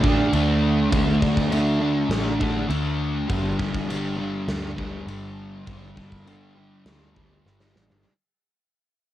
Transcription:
0.00 0.29 A1 loud
0.00 0.32 D3 medium
0.00 0.35 D4 medium
0.00 kick medium
0.06 0.34 A3 medium
0.33 0.88 D2 medium
0.33 0.89 D3 medium
0.33 0.92 A3 medium
0.33 0.93 D4 medium
0.33 crash medium
0.90 2.07 D2 loud
0.90 1.49 D3 medium
0.90 1.23 A3 medium
0.90 1.20 D4 medium
0.90 kick loud
0.90 crash medium
1.21 1.52 A3 medium
1.21 1.53 D4 medium
1.21 kick medium
1.37 kick medium
1.50 2.10 D3 medium
1.50 1.82 A3 medium
1.50 1.80 D4 medium
1.50 crash medium
1.80 2.42 A3 medium
1.80 2.39 D4 medium
2.09 2.65 A1 loud
2.09 snare loud
2.09 crash medium
2.39 2.69 A3 medium
2.39 2.70 D4 medium
2.39 kick medium
2.68 3.25 D2 medium
2.68 3.26 D3 medium
2.68 3.31 A3 medium
2.68 6.20 D4 medium
2.68 crash medium
3.28 4.44 G1 loud
3.28 3.88 G2 medium
3.28 3.60 D3 medium
3.28 3.58 G3 medium
3.28 kick loud
3.28 crash medium
3.58 3.88 D3 medium
3.58 3.91 G3 medium
3.58 kick medium
3.75 kick medium
3.88 5.06 G2 medium
3.88 4.19 D3 medium
3.88 4.17 G3 medium
3.88 crash medium
4.17 4.78 D3 medium
4.17 4.76 G3 medium
4.48 5.03 D2 loud
4.48 snare loud
4.48 crash medium
4.76 5.06 D3 medium
4.76 5.09 G3 medium
4.76 kick medium
5.06 5.63 G1 medium
5.06 5.64 G2 medium
5.06 5.66 D3 medium
5.06 5.67 G3 medium
5.06 crash medium
5.65 6.82 G1 medium
5.65 6.24 G2 medium
5.65 5.98 D3 medium
5.65 5.94 G3 medium
5.65 kick loud
5.65 crash soft
5.96 6.26 D3 medium
5.96 6.27 G3 medium
5.96 kick medium
6.12 kick medium
6.25 6.85 G2 medium
6.25 6.56 D3 medium
6.25 6.54 G3 medium
6.25 crash soft
6.55 7.17 D3 medium
6.55 7.14 G3 medium
6.86 7.41 D2 loud
6.86 snare loud
6.86 crash medium
7.15 7.44 D3 soft
7.15 7.46 G3 medium
7.15 kick medium
7.44 7.73 G1 medium
7.44 8.03 G2 medium
7.44 8.03 D3 medium
7.44 8.04 G3 medium
7.44 snare medium
7.60 snare medium
7.76 7.89 A1 medium
7.76 snare medium
7.90 8.04 G1 medium
7.90 snare medium

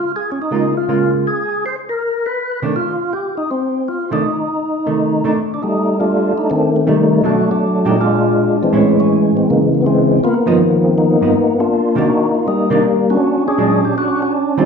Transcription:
0.00 0.12 F4 medium
0.16 0.31 G#4 medium
0.32 0.39 C#4 medium
0.42 0.75 D#4 medium
0.51 0.73 C#3 soft
0.51 0.73 G#3 soft
0.51 0.73 A#3 soft
0.51 0.74 F4 medium
0.77 1.11 F4 medium
0.88 1.26 C#3 soft
0.88 1.26 G#3 soft
0.88 1.26 A#3 medium
0.88 1.26 F4 medium
1.27 1.65 G#4 medium
1.66 1.76 C5 medium
1.89 2.27 A#4 medium
2.26 2.60 B4 medium
2.62 2.74 C3 medium
2.62 2.74 D#3 medium
2.62 2.74 A3 medium
2.62 2.74 D4 medium
2.76 3.14 F4 loud
3.13 3.35 G4 medium
3.37 3.50 D#4 medium
3.51 3.89 C4 medium
3.88 4.11 F4 medium
4.11 4.23 C3 soft
4.11 4.23 D#3 medium
4.11 4.23 A3 medium
4.11 4.23 D4 medium
4.11 5.33 D#4 medium
4.86 5.21 C3 soft
4.86 5.21 D#3 soft
4.86 5.21 A3 soft
5.24 5.35 C3 soft
5.24 5.36 D#3 medium
5.24 5.36 A3 medium
5.24 5.36 D4 medium
5.54 5.62 D4 medium
5.63 6.33 G3 medium
5.63 5.99 A3 medium
5.63 5.97 D#4 medium
6.00 6.50 A3 soft
6.00 6.70 D4 medium
6.00 6.34 F4 loud
6.38 6.49 D#4 medium
6.50 7.20 D#3 medium
6.50 6.88 A3 medium
6.50 6.72 C4 medium
6.76 6.88 C4 medium
6.87 7.23 C3 medium
6.87 7.23 D#3 medium
6.87 7.22 G3 medium
6.87 7.23 A3 medium
6.87 7.22 A3 medium
6.87 7.25 D#4 medium
7.23 7.45 B2 soft
7.23 7.45 F#3 soft
7.23 7.46 A3 soft
7.23 7.50 A3 medium
7.23 7.46 D4 soft
7.23 7.50 D4 medium
7.23 7.49 F#4 medium
7.51 7.96 F#3 medium
7.51 7.96 A3 medium
7.51 7.88 D4 medium
7.85 8.33 A#2 medium
7.85 8.33 G#3 medium
7.85 8.33 D4 medium
7.85 7.98 D#4 medium
7.85 8.33 G4 medium
8.01 8.62 G#3 medium
8.01 8.70 D4 medium
8.01 8.57 F4 medium
8.63 8.99 E3 medium
8.63 8.99 G#3 medium
8.63 8.96 C4 medium
8.73 9.29 A2 medium
8.73 9.30 G#3 medium
8.73 9.30 C#4 medium
8.73 9.30 E4 medium
9.00 9.49 E3 medium
9.00 9.69 G#3 medium
9.00 9.37 C#4 medium
9.37 9.48 C4 medium
9.50 10.20 C#3 medium
9.50 9.85 E3 medium
9.50 9.61 A#3 medium
9.74 9.81 A#3 medium
9.82 9.86 B3 medium
9.86 10.20 E3 medium
9.86 10.20 G#3 medium
9.86 10.24 C4 medium
10.24 10.94 A#3 medium
10.24 10.46 B3 medium
10.24 10.34 F4 loud
10.46 10.58 G2 medium
10.46 11.18 D#3 medium
10.46 10.58 F3 medium
10.46 11.18 F3 medium
10.46 10.58 B3 medium
10.46 10.85 B3 medium
10.46 10.58 D#4 medium
10.85 10.96 C4 medium
10.98 11.59 A#3 medium
10.98 11.68 B3 medium
10.98 11.55 D#4 medium
11.21 11.33 G2 medium
11.21 11.33 F3 soft
11.21 11.33 B3 medium
11.21 11.33 D#4 medium
11.60 11.97 A#3 medium
11.60 12.30 D4 medium
11.60 11.98 F4 medium
11.95 12.07 C3 medium
11.95 12.07 D#3 medium
11.95 12.08 A#3 medium
11.95 12.47 A#3 medium
11.95 12.08 D4 medium
11.95 12.46 D#4 medium
11.95 12.32 F#4 loud
12.35 12.47 F4 medium
12.48 13.17 G3 medium
12.48 13.17 A#3 medium
12.48 12.70 D#4 medium
12.70 12.82 C3 medium
12.70 12.82 D#3 medium
12.70 12.82 A#3 medium
12.70 12.82 D4 medium
12.70 12.84 D#4 medium
13.10 13.47 C#4 medium
13.10 13.47 D4 medium
13.10 13.44 F#4 medium
13.48 13.96 C#4 medium
13.48 13.97 D4 medium
13.48 13.81 G#4 loud
13.58 13.80 A#2 medium
13.58 13.80 F#3 medium
13.58 13.80 G#3 medium
13.58 13.80 D4 medium
13.85 13.96 G4 medium
13.98 14.65 C#4 medium
13.98 14.65 D4 medium
13.98 14.21 F#4 medium
14.22 14.33 F#4 medium
14.58 14.65 D#3 medium
14.58 14.65 G3 medium
14.58 14.65 C4 medium
14.58 14.65 D#4 medium
14.58 14.65 F4 medium

